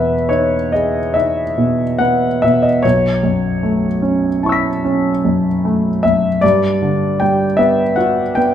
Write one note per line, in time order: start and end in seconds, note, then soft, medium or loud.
0.00 2.80 E2 soft
0.00 0.12 B2 soft
0.00 0.56 B3 soft
0.00 2.86 B4 medium
0.00 0.29 E5 medium
0.29 0.99 D#4 soft
0.29 0.72 C#5 medium
0.72 1.42 G#4 soft
0.72 1.15 D#5 soft
1.14 1.83 D#4 soft
1.14 1.99 E5 medium
1.58 2.26 B2 soft
1.99 2.68 B3 soft
1.99 2.42 F#5 medium
2.42 2.84 B2 soft
2.42 2.63 E5 medium
2.62 2.83 D#5 soft
2.83 6.39 B1 soft
2.83 6.03 C#5 medium
3.23 3.87 F#2 soft
3.63 4.27 A3 soft
4.02 4.68 C#4 soft
4.43 5.09 E4 soft
4.43 6.38 A5 soft
4.43 6.40 C#6 soft
4.49 6.41 E6 soft
4.49 6.43 B6 soft
4.84 5.48 C#4 soft
5.25 5.87 F#2 soft
5.65 6.27 A3 soft
6.03 6.43 F#2 soft
6.03 6.42 E5 medium
6.41 8.54 G2 soft
6.41 7.20 D5 medium
6.82 7.44 D3 soft
7.20 7.83 G3 soft
7.20 7.59 G5 medium
7.57 8.22 B3 soft
7.57 7.97 E5 medium
7.96 8.54 F#4 soft
7.96 8.37 F#5 medium
8.35 8.54 B3 soft
8.35 8.54 G5 medium